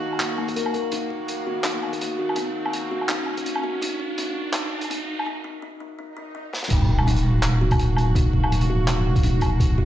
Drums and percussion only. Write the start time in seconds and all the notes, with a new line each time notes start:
0.13 low woodblock
0.20 clap, closed hi-hat
0.38 low woodblock
0.48 kick, closed hi-hat
0.56 closed hi-hat
0.66 low woodblock
0.74 kick, closed hi-hat
0.92 kick, closed hi-hat
1.10 kick
1.28 closed hi-hat
1.64 clap, closed hi-hat
1.83 low woodblock
1.93 kick, closed hi-hat
2.01 closed hi-hat
2.29 low woodblock
2.36 kick, closed hi-hat
2.66 low woodblock
2.73 closed hi-hat
3.01 low woodblock
3.08 clap, closed hi-hat
3.26 low woodblock
3.37 kick, closed hi-hat
3.46 closed hi-hat
3.55 low woodblock
3.64 kick
3.82 kick, closed hi-hat
4.00 kick
4.18 closed hi-hat
4.53 clap, closed hi-hat
4.72 low woodblock
4.78 kick, closed hi-hat, low woodblock
4.84 low woodblock
4.91 closed hi-hat
5.19 low woodblock
6.53 snare
6.63 snare
6.70 kick, closed hi-hat, crash
6.89 kick
6.99 low woodblock
7.08 closed hi-hat
7.17 closed hi-hat
7.43 clap, closed hi-hat
7.71 kick, closed hi-hat, low woodblock
7.79 closed hi-hat
7.97 closed hi-hat, low woodblock
8.15 kick, closed hi-hat
8.33 kick
8.44 low woodblock
8.52 closed hi-hat
8.61 closed hi-hat
8.88 clap, closed hi-hat
9.16 kick, closed hi-hat
9.23 closed hi-hat
9.41 kick, closed hi-hat, low woodblock
9.60 kick, closed hi-hat
9.78 kick